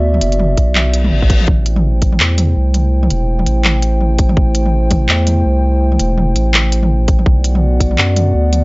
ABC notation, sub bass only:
X:1
M:4/4
L:1/8
Q:"Swing 16ths" 1/4=166
K:Ador
V:1 name="Sub bass" clef=bass
D,, F,,,2 B,,,3 A,,,2 | A,,,4 E,,2 C,,2- | C,, E,,,2 A,,,4- A,,, | A,,,4 E,,2 C,,2- |
C,, E,,,2 A,,,4- A,,, | B,,,4 F,,2 D,,2 |]